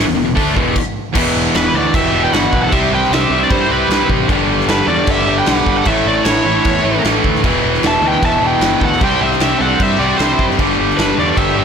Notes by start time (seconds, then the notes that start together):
0.06 E1 E2 B2
0.16 E1 E2 B2
0.26 E1 E2 B2
0.35 D2 D3 A3 D4, kick, open hi-hat
0.55 E1 E2 B2 E3, kick
0.76 kick, crash
1.13 E1 E2 B2 E3, kick, crash
1.35 E1
1.46 snare
1.55 E1 E4 B4, snare, crash
1.73 D2 E2 B2 E3 D5
1.77 F#4
1.94 E1 G4 E5, kick, crash
2.11 E1 E2 B2 E3
2.24 B4 G5
2.31 G1 E2 B2 B4 F#5, snare, crash
2.35 E3
2.53 B1, kick
2.62 A4 F#5
2.70 C2 C3 G3 C4 G4 E5, kick, crash
2.91 C2 B4 G5
3.04 snare
3.11 C2 G4 E5, snare, crash
3.29 C2 C3 G3 C4
3.41 F#4 D5
3.49 G2 E4 C5, kick, crash
3.69 C2 C3 G3 C4 E4 B4
3.89 C2 C3 G3 C4, snare, crash
4.09 A1, kick
4.28 G1 G2 D3 G3, kick, crash
4.48 G1
4.60 snare
4.67 G1 B4, snare, crash
4.71 D4
4.88 E2 G2 D3 G3 F#4 D5
5.07 G1 G4 E5, kick, crash
5.26 G1 G2 D3 G3
5.39 B4 G5
5.45 B1 G2 D3 G3 B4 F#5, snare, crash
5.66 G1, kick
5.77 A4 F#5
5.85 A1 A2 E3 E5, kick, crash
5.89 A3 A4
6.06 A1 F#4 D5
6.25 A1 C#5, snare, crash
6.29 E4
6.45 A1 E3 A3
6.49 A2
6.65 E2, kick, crash
6.83 A1 A2 E3 A3
7.02 A1 A2 E3 A3, snare, crash
7.24 D2, kick
7.35 snare
7.42 E1 E2 B2 E3, kick, crash
7.64 E1
7.74 snare
7.83 E1 E5, snare, crash
7.87 A5
8.01 D2 E2 B2 E3
8.06 B4 G5
8.22 E1 E5 A5, kick, crash
8.40 E1 B2 E3 B4
8.45 E2 G5
8.59 G1 E2 B2 E3, snare, crash
8.81 D2 A4, kick
8.85 F#5
8.92 snare
8.99 C2 C3 G3 C4 C5, kick, crash
9.04 G5
9.19 C2 G4 E5
9.32 snare
9.40 C2 G4 E5, snare, crash
9.59 C2 C3 G3 C4 A4 F#5
9.80 G2 G4 E5, kick, crash
9.98 C2 C3 G3 C4 F#4 D5
10.18 C2 C3 G3 C4 E4 C5, snare, crash
10.39 F#1, kick
10.51 snare
10.57 G1 G2 D3 G3, kick, crash
10.79 G1
10.90 snare
10.97 G1 D4 B4, snare, crash
11.16 E2 D3 G3 F#4 D5
11.21 G2
11.37 G1 G4 E5, kick, crash
11.56 G1 G2 D3 G3